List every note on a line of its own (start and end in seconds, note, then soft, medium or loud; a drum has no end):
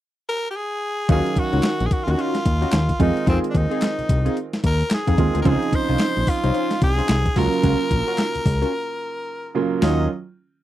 0.29 0.48 A#4 loud
0.50 0.58 G4 medium
0.56 1.10 G#4 loud
1.08 1.21 D#2 loud
1.08 2.03 D#3 medium
1.08 2.03 F#3 medium
1.08 1.27 C#4 medium
1.08 2.03 C#4 medium
1.08 1.27 D#4 medium
1.08 1.27 F4 medium
1.08 1.27 F#4 loud
1.08 1.40 G#4 loud
1.08 2.04 F5 medium
1.08 kick loud
1.08 closed hi-hat medium
1.26 closed hi-hat medium
1.36 1.87 F#4 loud
1.36 kick medium
1.36 closed hi-hat medium
1.53 1.61 C#2 medium
1.53 1.66 C#4 medium
1.53 1.66 D#4 medium
1.53 1.66 F4 medium
1.53 1.66 F#4 medium
1.53 closed hi-hat soft
1.63 snare loud
1.63 clap medium
1.63 closed hi-hat medium
1.80 1.88 A#1 medium
1.80 closed hi-hat soft
1.86 1.94 G#4 medium
1.91 2.05 F#4 medium
1.91 kick medium
1.91 closed hi-hat medium
2.04 2.16 C#4 medium
2.04 2.17 D#4 medium
2.04 2.13 F4 medium
2.04 2.17 F4 medium
2.04 2.17 F#4 medium
2.08 2.15 D#2 medium
2.08 2.22 F#4 medium
2.08 closed hi-hat medium
2.18 2.36 C#4 medium
2.18 2.36 D#4 medium
2.18 2.36 F4 medium
2.18 3.01 F4 loud
2.18 2.36 F#4 medium
2.18 closed hi-hat medium
2.35 snare medium
2.35 closed hi-hat soft
2.46 2.65 D#2 loud
2.46 kick loud
2.46 closed hi-hat medium
2.61 2.75 C#4 medium
2.61 2.75 D#4 medium
2.61 2.75 F4 medium
2.61 2.75 F#4 medium
2.61 closed hi-hat medium
2.72 2.92 D#2 loud
2.72 snare loud
2.72 clap medium
2.72 closed hi-hat medium
2.89 kick medium
2.89 closed hi-hat soft
2.99 3.12 F2 medium
2.99 3.94 D#3 medium
2.99 3.94 G#3 medium
2.99 3.18 C4 medium
2.99 3.94 C4 medium
2.99 3.18 D#4 medium
2.99 3.26 D#4 medium
2.99 3.18 F4 medium
2.99 3.94 F4 medium
2.99 3.18 G#4 medium
2.99 kick loud
2.99 closed hi-hat medium
3.17 closed hi-hat medium
3.26 3.39 F2 loud
3.26 3.45 C4 loud
3.26 3.38 C4 medium
3.26 3.45 D#4 medium
3.26 3.45 F4 medium
3.26 3.45 G#4 loud
3.26 kick loud
3.26 closed hi-hat medium
3.44 closed hi-hat medium
3.50 3.58 D4 medium
3.55 3.67 D#2 medium
3.55 4.38 D#4 medium
3.55 kick medium
3.55 closed hi-hat medium
3.70 3.84 C4 medium
3.70 3.84 D#4 medium
3.70 3.84 F4 medium
3.70 3.84 G#4 medium
3.70 closed hi-hat soft
3.82 snare loud
3.82 clap medium
3.82 closed hi-hat medium
3.99 4.03 C2 soft
3.99 closed hi-hat soft
4.09 4.29 C2 medium
4.09 kick loud
4.09 closed hi-hat medium
4.25 4.39 C4 medium
4.25 4.39 D#4 medium
4.25 4.39 F4 medium
4.25 4.39 G#4 medium
4.25 closed hi-hat medium
4.37 closed hi-hat medium
4.53 snare medium
4.53 closed hi-hat soft
4.64 4.83 D#2 loud
4.64 4.90 A#4 loud
4.64 kick medium
4.64 closed hi-hat medium
4.81 closed hi-hat medium
4.90 5.38 G#4 medium
4.90 snare loud
4.90 clap medium
4.90 closed hi-hat medium
5.07 5.15 F2 medium
5.07 5.20 C4 medium
5.07 5.20 D#4 medium
5.07 5.21 F4 medium
5.07 5.21 G#4 medium
5.07 kick medium
5.07 closed hi-hat soft
5.18 5.30 D#2 medium
5.18 5.42 D#3 medium
5.18 5.42 G#3 medium
5.18 5.42 C4 medium
5.18 5.42 F4 medium
5.18 kick loud
5.18 closed hi-hat medium
5.34 5.43 D2 medium
5.34 5.47 C4 medium
5.34 5.44 D#4 medium
5.34 5.44 F4 medium
5.34 5.48 G#4 medium
5.34 closed hi-hat medium
5.42 5.57 C#2 loud
5.42 6.39 C#3 medium
5.42 6.39 F3 medium
5.42 5.63 C#4 medium
5.42 5.63 D#4 medium
5.42 5.63 F4 medium
5.42 5.49 A#4 medium
5.42 5.64 C5 loud
5.42 kick loud
5.42 closed hi-hat medium
5.46 6.40 C4 medium
5.46 5.54 C#4 medium
5.46 5.76 G#4 loud
5.53 6.43 D#4 medium
5.63 closed hi-hat soft
5.73 6.31 C5 loud
5.73 kick medium
5.73 closed hi-hat medium
5.88 5.97 C2 medium
5.88 6.02 C#4 medium
5.88 6.02 D#4 medium
5.88 6.02 F4 medium
5.88 6.02 C5 medium
5.88 closed hi-hat soft
5.99 snare loud
5.99 clap medium
5.99 closed hi-hat medium
6.17 6.24 A#1 medium
6.17 closed hi-hat soft
6.27 6.83 F4 loud
6.27 kick medium
6.27 open hi-hat medium
6.43 6.51 C2 medium
6.43 6.53 C#4 medium
6.43 6.53 D#4 medium
6.43 6.53 F4 medium
6.43 6.53 C5 medium
6.43 closed hi-hat medium
6.54 6.72 C#4 medium
6.54 6.73 D#4 medium
6.54 6.73 F4 medium
6.54 6.73 C5 medium
6.54 closed hi-hat medium
6.71 snare medium
6.71 closed hi-hat soft
6.82 7.01 C2 loud
6.82 7.40 G#4 loud
6.82 kick loud
6.82 closed hi-hat medium
6.98 7.11 C#4 medium
6.98 7.11 D#4 medium
6.98 7.12 F4 medium
6.98 7.12 C5 medium
6.98 closed hi-hat medium
7.09 7.29 C2 medium
7.09 snare loud
7.09 clap loud
7.09 closed hi-hat medium
7.26 kick medium
7.26 closed hi-hat soft
7.36 7.48 C#2 medium
7.36 8.30 C#3 medium
7.36 8.30 F#3 medium
7.36 8.31 A#3 medium
7.36 7.54 C#4 medium
7.36 7.54 F4 medium
7.36 8.31 F4 medium
7.36 7.55 F#4 medium
7.36 7.55 A#4 medium
7.36 9.55 A#4 loud
7.36 kick loud
7.36 open hi-hat medium
7.53 closed hi-hat medium
7.63 7.75 C#2 loud
7.63 7.82 C#4 medium
7.63 7.82 F4 medium
7.63 7.82 F#4 medium
7.63 7.82 A#4 loud
7.63 kick loud
7.63 closed hi-hat medium
7.81 closed hi-hat soft
7.91 8.03 A#1 medium
7.91 kick medium
7.91 closed hi-hat medium
8.07 8.20 C#4 medium
8.07 8.20 F4 medium
8.07 8.21 F#4 medium
8.07 8.21 A#4 medium
8.07 closed hi-hat soft
8.18 snare loud
8.18 clap medium
8.18 closed hi-hat medium
8.35 8.39 C#2 soft
8.35 closed hi-hat soft
8.46 8.65 C#2 loud
8.46 kick medium
8.46 open hi-hat medium
8.62 8.73 C#4 medium
8.62 8.73 F4 medium
8.62 8.73 F#4 medium
8.62 8.73 A#4 medium
8.62 closed hi-hat medium
9.55 9.79 C#3 medium
9.55 9.79 F#3 medium
9.55 9.79 A#3 medium
9.55 9.79 F4 medium
9.81 10.08 D#2 loud
9.81 10.08 D#3 medium
9.81 10.08 F#3 medium
9.81 10.08 C#4 medium
9.81 10.03 D#4 medium
9.81 10.03 F4 medium
9.81 10.08 F4 medium
9.81 10.03 F#4 medium
9.81 10.03 C#5 loud
9.81 10.08 D#5 medium
9.81 snare loud
9.81 open hi-hat medium